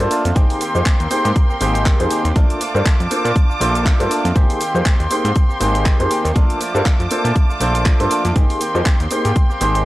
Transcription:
Already playing: A3 D5 A5
0.00 A#3 D4 F4 A4 C5, closed hi-hat, shaker
0.10 A3 D4 F4, open hi-hat, shaker
0.25 F2, closed hi-hat, shaker
0.35 G#1 D#3 A#3 C4 D#4 G4 G#4 A#4 C5 G5 C6, kick, closed hi-hat, shaker
0.50 open hi-hat, shaker
0.60 D#3 A#3 C4 G4, open hi-hat, shaker
0.75 F2 A#3 C4 D#4 G4 G#4 C5, shaker
0.86 D#3 A#3 G4, kick, clap, closed hi-hat, shaker
1.00 D#2 A#3 C4 G4, closed hi-hat, shaker
1.10 A#3 D#4 G4 G#4 C5, open hi-hat, shaker
1.25 G#2 A#3 C4 G4, closed hi-hat, shaker
1.36 kick, closed hi-hat, shaker
1.50 A#3 C4 G4, shaker
1.60 G#1 D#3 G#3 A#3 C4 D#4 G4 C5, open hi-hat, shaker
1.75 A#3 C4 G4, closed hi-hat, shaker
1.86 D#3 A#3 C4 G4, kick, clap, closed hi-hat, shaker
2.00 F2 A#3 C4 D#4 G4 G#4 C5, closed hi-hat, shaker
2.11 D#3 A#3 C4 G4, open hi-hat, shaker
2.25 D#2, closed hi-hat, shaker
2.36 A#1 A3 A#3 D4 F4 A4 C5 A5 D6, kick, closed hi-hat, shaker
2.50 closed hi-hat, shaker
2.60 A3 D4 F4, open hi-hat, shaker
2.74 G2 A#3 D4 F4 A4 C5, shaker
2.85 A3 D4, kick, clap, closed hi-hat, shaker
2.99 F2 D4 F4, closed hi-hat, shaker
3.10 A#3 D4 F4 A4 C5, open hi-hat, shaker
3.24 A#2 D4 F4, closed hi-hat, shaker
3.36 kick, closed hi-hat, shaker
3.50 D4 F4, shaker
3.60 A#1 A3 D4 F4 A4 C5, open hi-hat, shaker
3.74 D4 F4, closed hi-hat, shaker
3.85 A3 F4, kick, clap, closed hi-hat, shaker
4.00 G2 A#3 D4 F4 A4 C5, closed hi-hat, shaker
4.10 A3 D4 F4, open hi-hat, shaker
4.25 F2, closed hi-hat, shaker
4.35 G#1 D#3 A#3 C4 D#4 G4 G#4 C5 G5 C6, kick, closed hi-hat, shaker
4.50 open hi-hat, shaker
4.60 D#3 A#3 C4 G4, open hi-hat, shaker
4.74 F2 A#3 C4 D#4 G4 G#4 C5, shaker
4.85 D#3 G4, kick, clap, closed hi-hat, shaker
4.99 D#2 A#3 C4 G4, closed hi-hat, shaker
5.10 A#3 D#4 G4 G#4 C5, open hi-hat, shaker
5.24 G#2 A#3 C4 G4, closed hi-hat, shaker
5.36 kick, closed hi-hat, shaker
5.49 A#3 C4 G4, shaker
5.60 G#1 D#3 G#3 A#3 C4 D#4 G4 C5, open hi-hat, shaker
5.74 A#3 C4 G4, closed hi-hat, shaker
5.85 D#3 A#3 C4 G4, kick, clap, closed hi-hat, shaker
5.99 F2 A#3 C4 D#4 G4 G#4 C5, closed hi-hat, shaker
6.10 D#3 A#3 C4 G4, open hi-hat, shaker
6.25 D#2, closed hi-hat, shaker
6.35 A#1 F3 A3 A#3 D4 F4 A4 C5 A5 D6, kick, closed hi-hat, shaker
6.50 closed hi-hat, shaker
6.60 F3 A3 D4 F4, open hi-hat, shaker
6.74 G2 A3 A#3 D4 F4 A4 C5, shaker
6.85 F3 A3 D4 F4, kick, clap, closed hi-hat, shaker
6.99 F2 A3 D4 F4, closed hi-hat, shaker
7.11 A#3 D4 F4 A4 C5, open hi-hat, shaker
7.24 A#2 A3 D4 F4, closed hi-hat, shaker
7.36 kick, closed hi-hat, shaker
7.50 A3 D4 F4, shaker
7.60 A#1 F3 A3 D4 F4 A4 C5, open hi-hat, shaker
7.75 A3 D4 F4, closed hi-hat, shaker
7.86 F3 A3 D4 F4, kick, clap, closed hi-hat, shaker
8.00 G2 A#3 D4 F4 A4 C5, closed hi-hat, shaker
8.10 F3 A3 D4 F4, open hi-hat, shaker
8.25 F2, closed hi-hat, shaker
8.36 G#1 D#3 A#3 C4 D#4 G4 G#4 C5 G5 C6, kick, closed hi-hat, shaker
8.50 open hi-hat, shaker
8.60 D#3 A#3 C4 G4, open hi-hat, shaker
8.75 F2 A#3 C4 D#4 G4 G#4 C5, shaker
8.86 D#3 A#3 C4 G4, kick, clap, closed hi-hat, shaker
9.00 D#2 A#3 C4 G4, closed hi-hat, shaker
9.11 A#3 D#4 G4 G#4 C5, open hi-hat, shaker
9.25 G#2 A#3 C4 G4, closed hi-hat, shaker
9.36 kick, closed hi-hat, shaker
9.50 A#3 C4 G4, shaker
9.60 G#1 D#3 G#3 A#3 C4 D#4 G4 C5, open hi-hat, shaker
9.74 A#3 C4 G4, closed hi-hat, shaker

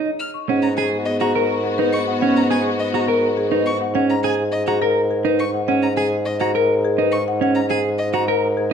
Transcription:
0.06 D#5
0.19 F6
0.34 C#6
0.48 G#2 B3 C#4 F#4 F#5
0.62 A#5
0.77 G#4 G#5
1.05 D#5
1.20 F#4 G#4 A#5
1.35 A#4
1.64 G#4
1.78 D#4 B4
1.93 C#6
2.08 F#5
2.21 C#4 F#5
2.36 A#5
2.50 G#4 G#5
2.80 D#5
2.94 F#4 G#4 A#5
3.08 A#4
3.37 G#4
3.51 D#4 B4
3.66 C#6
3.81 F#5
3.95 C#4 F#5
4.10 A#5
4.23 G#4 G#5
4.52 D#5
4.67 F#4 G#4 A#5
4.82 A#4
5.11 G#4
5.25 D#4 B4
5.39 C#6
5.54 F#5
5.68 C#4 F#5
5.82 A#5
5.97 G#4 G#5
6.25 D#5
6.40 F#4 G#4 A#5
6.55 A#4
6.84 G#4
6.98 D#4 B4
7.12 C#6
7.28 F#5
7.41 C#4 F#5
7.55 A#5
7.69 G#4 G#5
7.98 D#5
8.13 F#4 G#4 A#5
8.28 A#4
8.57 G#4

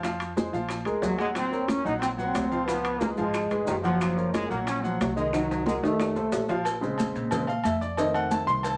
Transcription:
Already playing: F2
0.03 F3 F4 F5, high bongo, high conga, high timbale, maracas
0.20 high bongo, high conga, high timbale, maracas
0.36 G#3 G#4 C5, high bongo, high conga, low timbale, maracas
0.53 A#1 F3 F4 F5, high bongo, high conga, maracas
0.69 high bongo, high conga, high timbale, maracas
0.85 D2 G#3 G#4 A#4, high bongo, high conga, high timbale, maracas
1.02 D#2 F#3, high bongo, low bongo, high conga, low timbale, maracas
1.18 F#3 G#3 F#4 F#5, high conga, high timbale, maracas
1.35 F#3 C4 F#4 F#5, high bongo, high conga, high timbale, maracas
1.52 A#3 A#4 C#5, high bongo, high conga, maracas
1.67 C#4, high bongo, high conga, high timbale, low timbale, maracas
1.85 A#1 F#3 D#4 F#4 F#5, high bongo, high conga, maracas
2.00 C4, high bongo, high conga, high timbale, maracas
2.17 F#3 C4 F#4 F#5, high bongo, high conga, maracas
2.35 C#2, high bongo, low bongo, high conga, high timbale, low timbale, maracas
2.51 F3 F4 F5, maracas
2.65 F3 B3 F4 F5, high bongo, high conga, high timbale, maracas
2.85 high bongo, high conga, high timbale, maracas
2.99 G#3 A#3 G#4 B4, high bongo, high conga, low timbale, maracas
3.15 G#1 F3 G#3 F4 F5, high bongo, high conga, maracas
3.34 high bongo, high conga, high timbale, maracas
3.51 G#1 G#3 G#4 B4, high bongo, high conga, high timbale, maracas
3.65 F#1 D#3, high bongo, low bongo, high conga, low timbale, maracas
3.82 F3 F#3 F#4 F#5, high conga, high timbale, maracas
4.00 F#3 F#4 F#5, high bongo, high conga, high timbale, maracas
4.17 A#3 A#4 C#5, high bongo, high conga, maracas
4.32 G#3, high bongo, high conga, high timbale, low timbale, maracas
4.49 A#1 F#3 A#3 F#4 F#5, high bongo, high conga, maracas
4.65 C#4, high bongo, high conga, high timbale, maracas
4.82 F3 F#3 F#4 F#5, high bongo, high conga, maracas
4.99 C2 F#3, high bongo, low bongo, high conga, high timbale, low timbale, maracas
5.16 D#3 G#3 D#4 D#5, high conga, maracas
5.33 D#3 F#3 D#4 D#5, high bongo, high conga, high timbale, maracas
5.49 F#3, high bongo, high conga, high timbale, maracas
5.66 F#3 G#3 F#4 A#4, high bongo, high conga, maracas
5.82 F2 D#3 A3 D#4 D#5, high bongo, high conga, low timbale, maracas
5.99 high bongo, low timbale, maracas
6.16 C2 A3 A4 C5, high bongo, high conga, low timbale, maracas
6.32 A#1, high bongo, low bongo, high conga, low timbale, maracas
6.49 F3 F4 F5, high conga, low timbale, maracas
6.65 cowbell, high conga, low agogo, maracas
6.81 C#3 G#3 C4, high conga, maracas
6.98 cowbell, high conga, low agogo, maracas
7.15 A#2, cowbell, high conga, maracas
7.31 C#3 G#3 C4, cowbell, high conga, low conga, low agogo, maracas
7.47 F5, high conga, low agogo, maracas
7.64 F2 E5, cowbell, high conga, low agogo, maracas
7.81 D5, high conga, maracas
7.97 D#3 A3 C4 D#5, cowbell, high conga, low agogo, maracas
8.14 F#5, high conga, low agogo, maracas
8.31 A5, cowbell, high conga, maracas
8.47 C2 C6, high conga, maracas
8.63 A5, cowbell, high conga, low agogo, maracas

